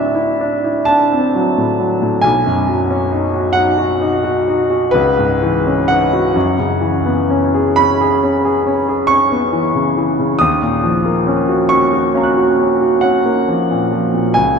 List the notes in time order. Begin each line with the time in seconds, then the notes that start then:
Already playing: D2 A2 F#3 C4 D4 E4 D5 E5
0.15 E4
0.41 D4
0.64 E4
0.85 D4 A5
1.12 C4
1.35 F#3
1.57 A2
1.79 F#3
2.02 A2
2.21 B1 G#5
2.46 F#2
2.69 F#3
2.90 C#4
3.12 D#4
3.33 F#4
3.53 D#4 F#5
3.78 F#4
4.01 D#4
4.24 F#4
4.48 D#4
4.70 F#4
4.91 C#2 B4
5.18 G#2
5.42 E3
5.67 C#4
5.88 D#4 F#5
6.13 F#4
6.36 F#2
6.58 C#3
6.81 E3
7.06 B3
7.30 C#4
7.54 G#4
7.76 C#4 B5
8.01 G#4
8.23 C#4
8.45 G#4
8.66 C#4
8.89 G#4
9.07 C#4 C#6
9.32 B3
9.53 E3
9.75 C#3
9.97 E3
10.19 C#3
10.39 D#2 D#6
10.62 A#2
10.83 F3
11.05 A#3
11.27 C#4
11.49 F#4
11.69 C#4 C#6
11.93 F#4
12.15 C#4 F5 A#5
12.21 C#6 F#6
12.37 F#4
12.59 C#4
12.81 F#4
13.01 C#4 F#5
13.26 A#3
13.48 F3
13.71 A#2
13.92 F3
14.14 A#2
14.34 C#2 G#5